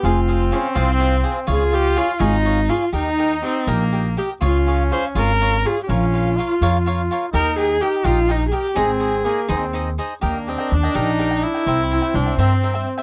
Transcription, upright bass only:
X:1
M:6/8
L:1/8
Q:3/8=83
K:Ab
V:1 name="Upright bass" clef=bass
F,,,3 C,,3 | D,,3 A,,,3 | E,,3 B,,,3 | D,,3 A,,,3 |
B,,,3 F,,3 | E,,3 B,,,3 | A,,,3 E,,3 | [K:Eb] E,,2 E,, B,,,3 |
C,,2 C,, G,,3 |]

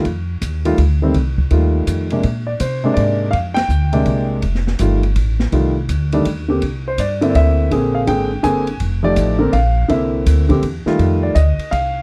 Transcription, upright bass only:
X:1
M:3/4
L:1/8
Q:"Swing" 1/4=164
K:Bb
V:1 name="Upright bass" clef=bass
F,,2 E,,2 D,,2 | C,,2 E,,2 F,,2 | B,,2 C,2 _A,,2 | F,,2 D,,2 C,,2 |
F,,,2 G,,,2 A,,,2 | C,,2 D,,2 E,,2 | C,,2 G,,2 D,,2 | B,,,2 _A,,,2 G,,,2 |
F,,,2 A,,,2 B,,,2 | C,,2 D,,2 =E,, z | F,,2 D,, z C,,2 |]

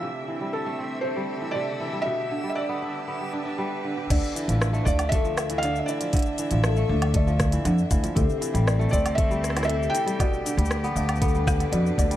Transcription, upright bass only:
X:1
M:4/4
L:1/16
Q:1/4=118
K:Ddor
V:1 name="Upright bass" clef=bass
z16 | z16 | D,, z2 A,,,2 z D,,6- D,, z3 | z3 A,,,2 z D,,4- D,, z F,, z D,, z |
D,, z2 A,,,2 z D,,6- D,, z3 | z3 D,,2 z D,,4- D,, z F,, z D,, z |]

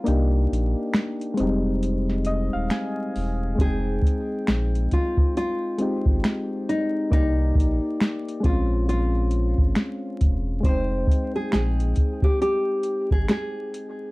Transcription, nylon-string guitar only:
X:1
M:4/4
L:1/16
Q:"Swing 16ths" 1/4=68
K:Fm
V:1 name="Nylon-string guitar"
z16 | A6 F2 F6 E2 | E6 F2 F6 z2 | c3 A A3 G G3 A A4 |]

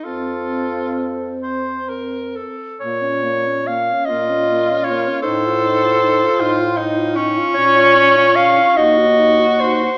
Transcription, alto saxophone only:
X:1
M:6/8
L:1/16
Q:3/8=48
K:Bbm
V:1 name="Alto saxophone"
C8- C2 z2 | B, D B, D B, D B, D B, D B, D | E F E F E F E F E F E F | D F D F D F E G E G E G |]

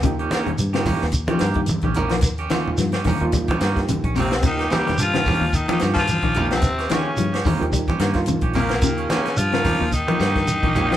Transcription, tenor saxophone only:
X:1
M:4/4
L:1/16
Q:"Swing 16ths" 1/4=109
K:Ebmix
V:1 name="Tenor saxophone"
z16 | z12 z2 C2 | E2 G2 F4 E E2 F4 C- | C2 D4 z8 B,2- |
B,2 D2 F4 E8 |]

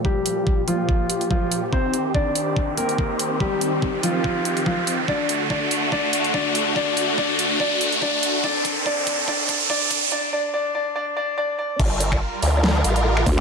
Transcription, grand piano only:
X:1
M:4/4
L:1/8
Q:"Swing 16ths" 1/4=143
K:Gm
V:1 name="Grand piano"
[G,G]3 [F,F]3 [F,F] z | [Cc] z [Dd]3 [B,B]3 | [G,G]3 [F,F]3 [F,F] z | [Dd] z [Dd]2 [Dd] z [Dd]2 |
[Dd] z [Dd]2 [Dd] z [Dd]2 | [Dd] z [Dd] z [Dd] z [Dd] z | [Dd] [Dd] [Dd] [Dd] [Dd] [Dd] [Dd] [Dd] | z8 |]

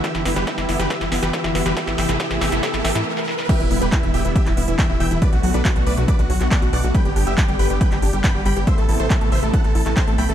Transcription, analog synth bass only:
X:1
M:4/4
L:1/16
Q:1/4=139
K:Em
V:1 name="Analog synth bass" clef=bass
z G,,, G,,, G,,, z G,,, G,,, G,,, z G,,, G,,, G,,, z G,,, G,,, G,,, | z A,,, A,,, A,,, z A,,, A,,, A,,, z A,,, A,,, A,, z4 | z E,,, E,,, E,,, z E,,, E,,, E,,, z E,,, E,,, E,,, z E,,, E,,, E,,, | z B,,, B,,, B,,, z B,,, B,,, B,,, z B,,, B,,, B,,, z B,,, B,,, B,,, |
z G,,, G,,, G,,, z G,,, G,,, G,,, z G,,, G,,, G,,, z G,,, G,,, G,,, | z A,,, A,,, A,,, z A,,, A,,, A,,, z A,,, A,,, A,,, z A,,, B,,, A,,, |]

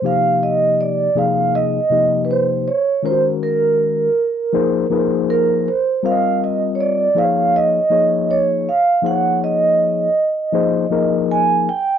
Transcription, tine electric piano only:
X:1
M:4/4
L:1/8
Q:"Swing 16ths" 1/4=80
K:Eb
V:1 name="Tine electric piano"
[C,F,B,EG]3 [C,F,B,EA]2 [C,F,B,EG]2 z | [E,A,_DF_GB]3 z [F,B,EAc] [F,B,EA=Bc]2 z | [G,CFBce]3 [F,B,EAc_d]2 [F,B,EAd]2 z | [F,B,EAc_d]3 z [F,B,EAc] [F,B,EAB]2 z |]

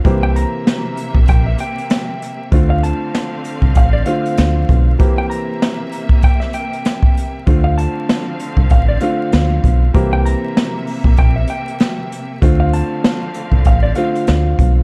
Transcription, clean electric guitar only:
X:1
M:4/4
L:1/16
Q:"Swing 16ths" 1/4=97
K:Dm
V:1 name="Clean electric guitar"
z g b6 g e g6 | z f a6 f d f6 | z g b6 g e g6 | z f a6 f d f6 |
z g b6 g e g6 | z f a6 f d f6 |]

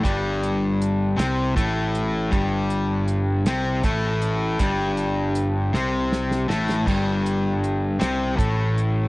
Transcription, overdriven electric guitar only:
X:1
M:6/8
L:1/8
Q:3/8=53
K:C
V:1 name="Overdriven electric guitar" clef=bass
[G,,G,]3 [C,C] [A,,A,]2 | [G,,G,]3 [C,C] [A,,A,]2 | [G,,G,]3 [C,C]2 [A,,A,] | [G,,G,]3 [C,C] [A,,A,]2 |]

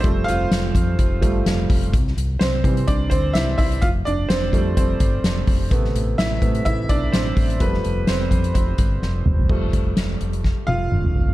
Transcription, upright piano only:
X:1
M:4/4
L:1/8
Q:"Swing 16ths" 1/4=127
K:Flyd
V:1 name="Upright piano"
[Cc] [Ff]6 z | z2 [Cc]2 [Dd] [Cc] [Ee] [Ee] | [Ff] [Dd] [Cc]2 [Cc]2 z2 | z2 [Ee]2 [Ee] [Dd] [Cc]2 |
[B,B]2 [Cc]2 [Cc]3 z | z4 z [Ff]3 |]
V:2 name="Upright piano" clef=bass
[F,G,A,]3 z2 [F,G,A,] z2 | z3 [E,G,C] z4 | z3 [F,G,A,]3 z2 | [C,A,B,] z2 [C,A,B,] z4 |
[F,G,A,]3 z4 z | [F,G,A,]8 |]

